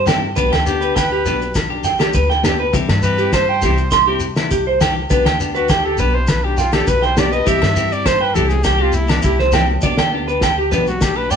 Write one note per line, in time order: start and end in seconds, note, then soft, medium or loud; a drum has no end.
0.00 0.33 G2 medium
0.06 0.25 E3 medium
0.06 0.26 C4 medium
0.06 0.26 E4 medium
0.06 0.27 G4 medium
0.06 0.19 G5 medium
0.06 snare medium
0.06 low agogo medium
0.06 shekere medium
0.36 0.51 B1 medium
0.36 0.56 B3 medium
0.36 0.56 D4 medium
0.36 0.56 G4 medium
0.36 0.49 B4 medium
0.36 kick medium
0.36 shekere medium
0.52 1.27 D2 medium
0.52 0.64 G5 medium
0.52 snare medium
0.52 low agogo medium
0.66 0.82 B3 medium
0.66 0.82 D4 medium
0.66 0.97 G4 medium
0.66 0.82 G4 medium
0.66 snare soft
0.66 shekere medium
0.81 1.00 G4 medium
0.81 0.93 B4 medium
0.81 shekere soft
0.85 1.02 D4 soft
0.96 1.56 B4 medium
0.96 1.08 G5 medium
0.96 kick medium
0.96 snare medium
0.96 low agogo medium
0.96 shekere medium
1.12 1.23 G4 medium
1.25 2.11 B1 loud
1.25 1.45 B3 medium
1.25 1.45 D4 medium
1.25 1.46 G4 medium
1.25 1.38 B4 medium
1.25 snare soft
1.25 shekere medium
1.41 shekere soft
1.54 kick medium
1.54 snare medium
1.54 low agogo medium
1.54 shekere medium
1.70 1.89 D4 soft
1.70 1.88 G4 medium
1.84 1.97 G5 medium
1.84 snare soft
1.84 shekere medium
1.99 2.19 D4 soft
1.99 2.11 G4 medium
1.99 2.18 G4 medium
1.99 snare medium
1.99 low agogo medium
1.99 shekere soft
2.13 2.70 D2 medium
2.13 2.27 B4 medium
2.13 kick medium
2.13 shekere medium
2.30 2.41 G5 medium
2.30 snare soft
2.43 2.62 B3 medium
2.43 2.63 D4 medium
2.43 2.56 G4 medium
2.43 2.63 G4 medium
2.43 snare medium
2.43 low agogo medium
2.43 shekere loud
2.60 2.71 B4 medium
2.73 2.88 C2 medium
2.73 2.92 E3 medium
2.73 2.92 C4 medium
2.73 2.92 E4 medium
2.73 2.93 G4 medium
2.73 muted clean electric guitar stroke medium
2.73 kick medium
2.73 shekere medium
2.89 3.64 G2 medium
2.89 snare medium
2.89 low agogo medium
3.02 3.19 E3 medium
3.02 3.19 C4 medium
3.02 3.18 E4 medium
3.02 3.17 G4 medium
3.02 3.34 B4 medium
3.02 shekere loud
3.18 3.37 C4 soft
3.18 3.37 E4 soft
3.18 3.36 G4 soft
3.18 3.30 G4 medium
3.18 shekere soft
3.33 3.93 C5 medium
3.33 3.45 C5 medium
3.33 kick medium
3.33 snare medium
3.33 low agogo medium
3.33 shekere medium
3.49 3.60 G5 medium
3.62 4.48 C2 medium
3.62 3.82 E3 medium
3.62 3.82 C4 medium
3.62 3.82 E4 medium
3.62 3.75 G4 medium
3.62 snare soft
3.62 shekere loud
3.66 3.83 G4 medium
3.77 shekere soft
3.91 4.04 C6 medium
3.91 kick medium
3.91 snare medium
3.91 low agogo medium
3.91 shekere medium
4.07 4.26 C4 soft
4.07 4.26 E4 medium
4.07 4.19 G4 medium
4.07 4.25 G4 medium
4.20 shekere loud
4.36 4.55 E4 medium
4.36 muted clean electric guitar stroke soft
4.36 snare medium
4.36 low agogo medium
4.36 shekere soft
4.51 5.07 C2 medium
4.51 4.63 G4 medium
4.51 kick medium
4.51 shekere medium
4.67 4.78 C5 medium
4.81 4.99 E3 medium
4.81 5.00 G4 medium
4.81 4.93 G5 medium
4.81 snare medium
4.81 low agogo medium
4.81 shekere loud
5.10 5.25 B1 medium
5.10 5.29 B3 medium
5.10 5.29 D4 medium
5.10 5.30 G4 medium
5.10 5.22 B4 medium
5.10 kick medium
5.10 shekere medium
5.25 6.01 D2 medium
5.25 5.37 G5 medium
5.25 snare medium
5.25 low agogo medium
5.40 5.56 B3 soft
5.40 5.56 D4 medium
5.40 5.55 G4 medium
5.40 shekere medium
5.55 5.74 D4 soft
5.55 5.72 F#4 medium
5.55 5.73 G4 soft
5.55 5.66 B4 medium
5.55 shekere soft
5.69 5.86 G4 medium
5.69 5.82 G5 medium
5.69 kick medium
5.69 snare medium
5.69 low agogo medium
5.69 shekere medium
5.84 5.96 G4 medium
5.84 6.01 A4 medium
5.98 6.84 B1 medium
5.98 6.17 B3 medium
5.98 6.18 D4 medium
5.98 6.18 G4 medium
5.98 6.16 B4 medium
5.98 6.12 B4 medium
5.98 shekere loud
6.14 6.31 C5 medium
6.27 6.46 B4 medium
6.27 kick medium
6.27 snare medium
6.27 low agogo medium
6.27 shekere medium
6.44 6.63 D4 soft
6.44 6.62 G4 medium
6.44 6.60 G4 medium
6.57 6.75 F4 medium
6.57 6.70 G5 medium
6.57 snare soft
6.57 shekere medium
6.72 6.92 D4 soft
6.72 6.91 G4 medium
6.72 6.85 G4 medium
6.72 6.90 A4 medium
6.72 snare medium
6.72 low agogo medium
6.72 shekere soft
6.87 7.43 B1 medium
6.87 7.00 B4 medium
6.87 7.06 B4 medium
6.87 kick medium
6.87 shekere medium
7.02 7.21 C5 medium
7.02 7.14 G5 medium
7.02 snare soft
7.17 7.36 B3 medium
7.17 7.36 D4 medium
7.17 7.29 G4 medium
7.17 7.36 G4 medium
7.17 7.35 D5 medium
7.17 snare medium
7.17 low agogo medium
7.17 shekere loud
7.32 7.44 B4 medium
7.32 7.49 D#5 medium
7.32 shekere soft
7.46 7.61 C2 medium
7.46 7.65 E3 medium
7.46 7.65 C4 medium
7.46 7.65 E4 medium
7.46 7.59 G4 medium
7.46 7.66 G4 medium
7.46 7.94 E5 medium
7.46 kick medium
7.46 shekere medium
7.62 8.38 G2 medium
7.62 snare medium
7.62 low agogo medium
7.75 7.91 E3 medium
7.75 7.91 C4 medium
7.75 7.91 E4 medium
7.75 7.91 G4 medium
7.75 snare soft
7.75 shekere loud
7.92 8.10 C4 soft
7.92 8.10 E4 soft
7.92 8.10 G4 medium
7.92 8.08 D5 medium
7.92 shekere soft
8.05 8.18 C5 medium
8.05 8.23 C5 medium
8.05 kick medium
8.05 snare medium
8.05 low agogo medium
8.05 shekere medium
8.21 8.36 B4 medium
8.21 8.32 G5 medium
8.34 9.21 C2 loud
8.34 8.54 E3 medium
8.34 8.54 C4 medium
8.34 8.54 E4 medium
8.34 8.48 G4 medium
8.34 8.55 G4 medium
8.34 8.50 A4 medium
8.34 low conga medium
8.34 shekere medium
8.49 8.65 G#4 medium
8.49 high conga medium
8.49 shekere soft
8.64 8.83 G4 medium
8.64 8.77 G5 medium
8.64 kick medium
8.64 snare medium
8.64 low agogo medium
8.64 shekere medium
8.78 8.98 C4 soft
8.78 8.96 F4 medium
8.78 8.97 G4 medium
8.78 8.92 G4 medium
8.92 9.11 E4 medium
8.92 high conga medium
8.92 shekere medium
9.08 9.28 C4 soft
9.08 9.23 D4 medium
9.08 9.27 E4 soft
9.08 9.27 G4 medium
9.08 snare medium
9.08 low agogo medium
9.08 shekere soft
9.22 9.80 C2 medium
9.22 9.41 E4 medium
9.22 9.37 G4 medium
9.22 kick medium
9.22 shekere medium
9.39 9.51 C5 medium
9.39 snare soft
9.39 high conga medium
9.52 9.71 E3 medium
9.52 9.72 C4 medium
9.52 9.72 E4 medium
9.52 9.72 G4 medium
9.52 9.66 G5 medium
9.52 snare medium
9.52 low agogo medium
9.52 shekere loud
9.56 low conga medium
9.71 high conga medium
9.82 9.97 B1 medium
9.82 10.02 B3 medium
9.82 10.02 D4 medium
9.82 10.03 G4 medium
9.82 9.95 D5 medium
9.82 kick medium
9.82 shekere medium
9.97 10.74 D2 medium
9.97 10.10 G5 medium
9.97 snare medium
9.97 low agogo medium
10.12 10.28 B3 medium
10.12 10.29 D4 medium
10.12 10.27 G4 medium
10.28 10.46 D4 soft
10.28 10.46 G4 medium
10.28 10.39 B4 medium
10.28 shekere soft
10.41 10.54 G5 medium
10.41 kick medium
10.41 snare medium
10.41 low agogo medium
10.41 shekere medium
10.58 10.69 G4 medium
10.72 11.36 B1 medium
10.72 10.90 B3 medium
10.72 10.91 D4 medium
10.72 10.91 G4 medium
10.72 10.84 B4 medium
10.72 snare soft
10.72 low conga medium
10.72 shekere loud
10.87 11.04 F#4 medium
10.87 high conga medium
10.87 shekere soft
11.01 11.18 G4 medium
11.01 kick medium
11.01 snare medium
11.01 low agogo medium
11.01 shekere medium
11.16 11.35 D4 soft
11.16 11.34 G4 soft
11.16 11.32 B4 medium
11.31 11.36 D5 loud
11.31 11.36 G5 medium
11.31 high conga medium
11.31 shekere loud